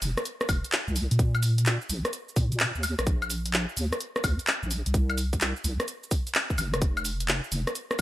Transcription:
0.02 0.15 F1 loud
0.02 open hi-hat loud
0.02 shaker medium
0.17 cross-stick medium
0.17 closed hi-hat soft
0.17 shaker soft
0.25 closed hi-hat medium
0.25 shaker soft
0.41 cross-stick medium
0.41 shaker soft
0.49 0.62 F1 medium
0.49 kick loud
0.49 open hi-hat loud
0.49 high woodblock medium
0.49 shaker medium
0.64 closed hi-hat soft
0.64 shaker soft
0.72 clap loud
0.72 closed hi-hat medium
0.72 shaker soft
0.88 1.07 C2 medium
0.88 shaker soft
0.96 open hi-hat loud
0.96 shaker medium
1.11 1.78 A#2 medium
1.11 closed hi-hat medium
1.11 shaker soft
1.19 kick loud
1.19 closed hi-hat medium
1.19 shaker soft
1.35 high woodblock medium
1.35 shaker soft
1.43 open hi-hat loud
1.43 shaker medium
1.58 closed hi-hat medium
1.58 shaker soft
1.66 clap loud
1.66 closed hi-hat medium
1.66 shaker soft
1.82 shaker soft
1.89 2.03 A#1 loud
1.89 open hi-hat loud
1.89 shaker medium
2.05 cross-stick medium
2.05 closed hi-hat soft
2.05 shaker soft
2.13 closed hi-hat medium
2.13 shaker soft
2.29 shaker soft
2.36 2.50 A#2 loud
2.36 kick loud
2.36 open hi-hat loud
2.36 shaker medium
2.52 2.71 A#2 medium
2.52 closed hi-hat soft
2.52 shaker soft
2.60 clap loud
2.60 closed hi-hat medium
2.60 shaker soft
2.75 2.95 D#2 loud
2.75 shaker soft
2.83 open hi-hat loud
2.83 high woodblock medium
2.83 shaker medium
2.99 3.66 A#1 loud
2.99 cross-stick medium
2.99 closed hi-hat medium
2.99 shaker soft
3.07 kick loud
3.07 closed hi-hat medium
3.07 shaker soft
3.22 high woodblock medium
3.22 shaker soft
3.30 open hi-hat loud
3.30 shaker medium
3.46 closed hi-hat medium
3.46 shaker soft
3.54 clap loud
3.54 closed hi-hat medium
3.54 shaker soft
3.69 shaker soft
3.77 3.90 D#2 loud
3.77 open hi-hat loud
3.77 shaker medium
3.93 cross-stick medium
3.93 closed hi-hat soft
3.93 shaker soft
4.00 closed hi-hat medium
4.00 shaker soft
4.16 cross-stick medium
4.16 shaker soft
4.24 4.37 D#2 medium
4.24 kick loud
4.24 open hi-hat loud
4.24 high woodblock medium
4.24 shaker medium
4.39 closed hi-hat soft
4.39 shaker soft
4.47 clap loud
4.47 closed hi-hat medium
4.47 shaker soft
4.63 4.82 A#1 medium
4.63 shaker soft
4.71 open hi-hat loud
4.71 shaker medium
4.86 5.53 C2 medium
4.86 closed hi-hat medium
4.86 shaker soft
4.94 kick loud
4.94 closed hi-hat medium
4.94 shaker soft
5.10 high woodblock medium
5.10 shaker soft
5.18 open hi-hat loud
5.18 shaker medium
5.33 kick medium
5.33 closed hi-hat medium
5.33 shaker soft
5.41 clap loud
5.41 closed hi-hat medium
5.41 shaker soft
5.56 shaker soft
5.64 5.78 C2 loud
5.64 open hi-hat loud
5.64 shaker medium
5.80 cross-stick medium
5.80 closed hi-hat soft
5.80 shaker soft
5.88 closed hi-hat medium
5.88 shaker soft
6.03 shaker soft
6.11 kick loud
6.11 open hi-hat loud
6.11 shaker medium
6.27 closed hi-hat soft
6.27 shaker soft
6.35 clap loud
6.35 closed hi-hat medium
6.35 shaker soft
6.50 kick medium
6.50 shaker soft
6.58 6.75 G1 loud
6.58 open hi-hat loud
6.58 high woodblock medium
6.58 shaker medium
6.74 7.41 F1 medium
6.74 cross-stick medium
6.74 closed hi-hat medium
6.74 shaker soft
6.82 kick loud
6.82 closed hi-hat medium
6.82 shaker soft
6.97 high woodblock medium
6.97 shaker soft
7.05 open hi-hat loud
7.05 shaker medium
7.20 closed hi-hat medium
7.20 shaker soft
7.28 clap loud
7.28 closed hi-hat medium
7.28 shaker soft
7.44 shaker soft
7.52 7.65 F1 loud
7.52 open hi-hat loud
7.52 shaker medium
7.67 cross-stick medium
7.67 closed hi-hat soft
7.67 shaker soft
7.75 closed hi-hat medium
7.75 shaker soft
7.91 cross-stick medium
7.91 shaker soft

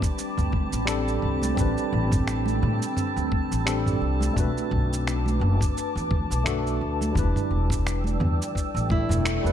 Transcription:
0.00 0.82 G3 medium
0.00 0.83 C4 medium
0.00 4.33 C4 medium
0.00 0.85 D4 medium
0.00 0.86 B4 medium
0.00 4.33 G5 medium
0.00 9.52 A5 medium
0.00 4.33 B5 medium
0.00 1.53 D6 medium
0.00 kick loud
0.00 cabasa medium
0.18 cabasa medium
0.38 0.66 D2 medium
0.38 mid tom medium
0.38 cabasa soft
0.52 kick medium
0.52 high conga medium
0.52 low conga medium
0.73 1.19 A1 medium
0.73 cabasa medium
0.86 1.53 G3 medium
0.86 1.53 C4 medium
0.86 1.54 D4 medium
0.86 1.54 A4 medium
0.86 finger snap medium
0.86 cabasa medium
1.08 cabasa soft
1.22 1.53 C2 medium
1.22 mid tom medium
1.42 high conga medium
1.42 cabasa medium
1.55 1.74 A1 medium
1.55 3.62 G3 medium
1.55 3.62 C4 medium
1.55 3.64 D4 medium
1.55 4.33 E6 medium
1.55 kick loud
1.55 low conga medium
1.55 cabasa medium
1.61 3.65 B4 medium
1.77 cabasa soft
1.93 2.58 A1 loud
2.12 kick medium
2.12 mid tom medium
2.12 cabasa medium
2.28 finger snap medium
2.28 cabasa soft
2.46 high conga medium
2.46 cabasa soft
2.62 2.79 A2 loud
2.62 low conga medium
2.82 cabasa medium
2.97 mid tom medium
2.97 cabasa medium
3.16 3.45 D2 medium
3.16 cabasa soft
3.32 kick medium
3.32 high conga medium
3.52 3.98 A1 medium
3.52 cabasa medium
3.66 4.32 G3 medium
3.66 4.33 C4 medium
3.66 4.33 D4 medium
3.66 4.34 A4 medium
3.66 finger snap medium
3.66 cabasa medium
3.87 mid tom medium
3.87 cabasa soft
4.02 4.31 C2 medium
4.21 high conga loud
4.21 cabasa medium
4.33 4.53 B1 medium
4.33 6.41 A3 medium
4.33 6.42 D4 medium
4.33 7.13 B4 medium
4.33 7.13 A5 medium
4.33 7.13 D6 medium
4.33 kick loud
4.33 low conga medium
4.33 cabasa medium
4.38 6.43 F#4 medium
4.38 6.44 B4 medium
4.58 cabasa soft
4.71 5.37 B1 medium
4.71 kick medium
4.71 mid tom medium
4.93 cabasa medium
5.07 finger snap medium
5.07 cabasa soft
5.26 high conga medium
5.26 cabasa soft
5.40 5.57 F#1 loud
5.40 low conga medium
5.61 kick loud
5.61 mid tom medium
5.61 cabasa medium
5.77 cabasa soft
5.95 6.24 E2 medium
5.95 cabasa soft
6.11 kick medium
6.11 high conga medium
6.11 low conga medium
6.30 6.77 B1 medium
6.30 cabasa medium
6.44 7.11 A3 medium
6.44 7.12 D4 medium
6.44 7.12 F#4 medium
6.44 7.13 A4 medium
6.44 finger snap loud
6.44 mid tom medium
6.44 cabasa medium
6.67 cabasa soft
6.81 7.11 D2 medium
7.01 high conga medium
7.01 cabasa medium
7.12 7.32 E1 medium
7.12 9.20 G3 medium
7.12 9.21 D4 medium
7.12 9.52 D5 medium
7.12 9.52 G5 medium
7.12 9.52 E6 medium
7.12 kick loud
7.12 low conga medium
7.16 9.22 E4 medium
7.16 9.23 B4 medium
7.16 cabasa medium
7.36 mid tom medium
7.36 cabasa soft
7.51 8.16 E1 medium
7.70 kick medium
7.70 cabasa medium
7.87 finger snap medium
7.87 cabasa medium
8.04 high conga medium
8.04 cabasa soft
8.20 8.36 E2 medium
8.20 mid tom medium
8.20 low conga medium
8.42 cabasa medium
8.55 kick medium
8.55 swell medium
8.55 cabasa medium
8.75 9.03 A1 medium
8.75 cabasa soft
8.89 9.52 E4 medium
8.89 kick loud
8.89 high conga medium
9.09 9.44 E1 medium
9.09 mid tom medium
9.09 cabasa medium
9.25 finger snap loud
9.25 cabasa medium
9.43 9.52 E1 medium
9.43 9.52 G3 medium
9.43 9.52 D4 medium
9.43 9.52 E4 medium
9.43 9.52 B4 medium
9.43 cabasa soft

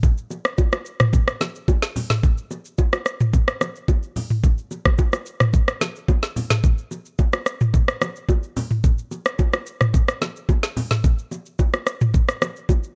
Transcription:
0.03 kick loud
0.03 low conga medium
0.03 shaker medium
0.18 shaker medium
0.30 low bongo medium
0.30 shaker loud
0.45 cross-stick loud
0.45 shaker medium
0.58 kick medium
0.58 high bongo medium
0.58 shaker medium
0.72 cross-stick loud
0.72 high bongo medium
0.72 shaker medium
0.86 shaker medium
1.00 cross-stick loud
1.00 mid tom medium
1.00 shaker medium
1.13 kick loud
1.13 low conga medium
1.13 shaker medium
1.28 cross-stick loud
1.28 shaker medium
1.41 snare medium
1.41 low bongo medium
1.41 shaker loud
1.55 shaker medium
1.68 kick loud
1.68 high bongo medium
1.68 low bongo medium
1.68 shaker medium
1.82 snare medium
1.82 shaker medium
1.96 open hi-hat medium
1.96 low conga medium
1.96 shaker medium
2.10 snare medium
2.10 mid tom medium
2.10 shaker soft
2.23 kick loud
2.23 low conga medium
2.23 shaker medium
2.38 shaker medium
2.51 low bongo medium
2.51 shaker medium
2.65 shaker medium
2.78 kick medium
2.78 high bongo medium
2.78 shaker medium
2.93 cross-stick loud
2.93 high bongo medium
2.93 shaker medium
3.06 cross-stick medium
3.06 shaker medium
3.20 mid tom medium
3.20 shaker medium
3.33 kick loud
3.33 low conga medium
3.33 shaker medium
3.48 cross-stick loud
3.48 shaker medium
3.61 cross-stick medium
3.61 low bongo medium
3.61 shaker medium
3.76 shaker medium
3.88 kick medium
3.88 high bongo medium
3.88 low bongo medium
3.88 shaker medium
4.03 shaker medium
4.16 open hi-hat medium
4.16 low conga medium
4.16 shaker medium
4.30 mid tom medium
4.30 shaker soft
4.44 kick loud
4.44 low conga medium
4.44 shaker medium
4.58 shaker medium
4.71 low bongo medium
4.71 shaker medium
4.85 kick loud
4.85 cross-stick loud
4.85 low bongo medium
4.85 shaker medium
4.98 kick medium
4.98 high bongo medium
4.98 shaker medium
5.13 cross-stick medium
5.13 high bongo medium
5.13 shaker medium
5.26 shaker medium
5.40 cross-stick loud
5.40 mid tom medium
5.40 shaker medium
5.53 kick loud
5.53 low conga medium
5.53 shaker medium
5.68 cross-stick loud
5.68 shaker medium
5.81 snare medium
5.81 low bongo medium
5.81 shaker loud
5.96 shaker medium
6.08 kick medium
6.08 high bongo medium
6.08 low bongo medium
6.08 shaker medium
6.23 snare medium
6.23 shaker medium
6.36 open hi-hat medium
6.36 low conga medium
6.36 shaker medium
6.50 snare medium
6.50 mid tom medium
6.50 shaker soft
6.64 kick loud
6.64 low conga medium
6.64 shaker medium
6.78 shaker medium
6.91 low bongo medium
6.91 shaker medium
7.05 shaker medium
7.18 kick loud
7.18 high bongo medium
7.18 shaker medium
7.33 cross-stick loud
7.33 high bongo medium
7.33 shaker medium
7.46 cross-stick medium
7.46 shaker medium
7.61 mid tom medium
7.61 shaker medium
7.73 kick loud
7.73 low conga medium
7.73 shaker medium
7.88 cross-stick loud
7.88 shaker medium
8.01 cross-stick loud
8.01 low bongo medium
8.01 shaker loud
8.16 shaker medium
8.29 kick medium
8.29 high bongo medium
8.29 low bongo medium
8.29 shaker medium
8.43 shaker medium
8.56 open hi-hat medium
8.56 low conga medium
8.56 shaker medium
8.70 mid tom medium
8.70 shaker soft
8.84 kick loud
8.84 low conga medium
8.84 shaker medium
8.98 shaker medium
9.11 low bongo medium
9.11 shaker medium
9.26 cross-stick loud
9.26 shaker medium
9.39 kick medium
9.39 high bongo medium
9.39 shaker medium
9.53 cross-stick loud
9.53 high bongo medium
9.53 shaker medium
9.66 shaker medium
9.81 cross-stick medium
9.81 mid tom medium
9.81 shaker medium
9.94 kick loud
9.94 low conga medium
9.94 shaker medium
10.08 cross-stick loud
10.08 shaker medium
10.22 snare medium
10.22 low bongo medium
10.22 shaker loud
10.36 shaker medium
10.49 kick medium
10.49 high bongo medium
10.49 low bongo medium
10.49 shaker medium
10.63 snare medium
10.63 shaker medium
10.77 open hi-hat medium
10.77 low conga medium
10.77 shaker medium
10.91 snare medium
10.91 mid tom medium
10.91 shaker soft
11.04 kick loud
11.04 low conga medium
11.04 shaker medium
11.18 shaker medium
11.31 low bongo medium
11.31 shaker medium
11.46 shaker medium
11.59 kick medium
11.59 high bongo medium
11.59 shaker medium
11.73 cross-stick medium
11.73 high bongo medium
11.73 shaker medium
11.87 cross-stick medium
11.87 shaker loud
12.01 mid tom medium
12.01 shaker medium
12.14 kick loud
12.14 low conga medium
12.14 shaker medium
12.29 cross-stick loud
12.29 shaker medium
12.42 cross-stick loud
12.42 low bongo medium
12.42 shaker loud
12.56 shaker medium
12.69 kick medium
12.69 high bongo medium
12.69 low bongo medium
12.69 shaker medium
12.83 shaker medium

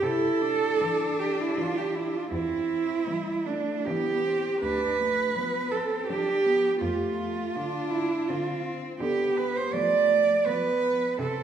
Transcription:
0.03 0.65 C3 medium
0.03 0.43 E4 medium
0.03 1.21 A4 loud
0.41 2.32 D4 medium
0.80 1.37 E3 medium
1.20 1.42 G4 medium
1.40 1.60 E4 medium
1.57 2.13 E3 medium
1.57 1.79 F4 medium
1.77 1.96 G4 medium
1.94 2.16 E4 medium
2.14 2.30 F4 medium
2.30 2.91 E2 medium
2.30 3.09 C4 medium
2.30 3.48 E4 medium
3.07 3.67 E3 medium
3.07 3.48 G3 medium
3.46 3.89 A3 medium
3.46 3.87 D4 medium
3.85 4.43 E3 medium
3.85 4.28 B3 medium
3.85 4.61 G4 medium
4.26 4.62 C4 medium
4.61 5.21 D2 medium
4.61 5.02 D4 medium
4.61 5.73 B4 loud
5.00 5.36 A3 medium
5.36 5.90 F3 medium
5.36 5.74 B3 medium
5.71 6.11 C4 medium
5.71 6.07 A4 medium
6.07 6.63 F3 medium
6.07 6.47 D4 medium
6.07 6.79 G4 loud
6.46 6.85 B3 medium
6.80 7.39 F2 medium
6.80 7.57 A3 medium
6.80 7.91 F4 medium
7.55 8.10 D3 medium
7.55 8.31 D4 medium
7.89 8.29 E4 medium
8.28 8.83 D3 medium
8.28 9.00 C4 medium
8.28 8.64 F4 medium
9.00 9.57 D3 medium
9.00 9.74 B3 medium
9.00 9.39 G4 medium
9.37 9.58 B4 medium
9.56 9.75 C5 medium
9.73 10.27 F3 medium
9.73 10.47 A3 medium
9.73 10.47 D5 medium
10.46 11.01 F3 medium
10.46 11.19 B3 medium
10.46 11.19 B4 loud
11.19 11.43 C3 medium
11.19 11.43 C4 medium
11.19 11.43 A4 medium

